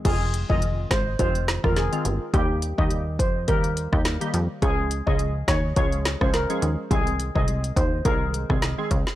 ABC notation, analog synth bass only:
X:1
M:4/4
L:1/16
Q:"Swing 16ths" 1/4=105
K:Fm
V:1 name="Analog synth bass" clef=bass
F,,,3 F,,,3 A,,,2 F,,,3 F,,,2 z G,,, z | E,,3 E,,3 F,,2 E,,3 E,,2 z F,, z | D,,3 D,,3 E,,2 D,,3 D,,2 z E,, z | C,,3 C,,3 E,,2 C,,3 C,,2 z D,, z |]